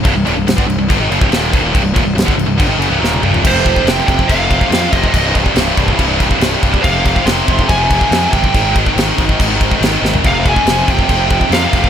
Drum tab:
CC |x-x-x-x-x-x-x-x-|x-x-x-x-x-x-----|x-x-x-x-x-x-x-x-|x-x-x-x-x-x-x-x-|
SD |----o-------o---|----o-------o---|----o-------o---|----o-------o---|
T1 |----------------|-------------o--|----------------|----------------|
T2 |----------------|--------------o-|----------------|----------------|
FT |----------------|---------------o|----------------|----------------|
BD |o----o--o--o--o-|o-o--o--o-------|o-oo--ooo-oo--oo|o-oo--ooo-oo--oo|

CC |x-x-x-x-x-x-x-x-|x-x-x-x-x-x-x---|x-x-x-x-x-x-x-x-|
SD |----o-------o---|----o-------o-o-|----o-------o---|
T1 |----------------|----------------|----------------|
T2 |----------------|----------------|----------------|
FT |----------------|---------------o|----------------|
BD |o-oo--ooo-oo--oo|o-oo--ooo-oo----|o-oo--ooo-oo--oo|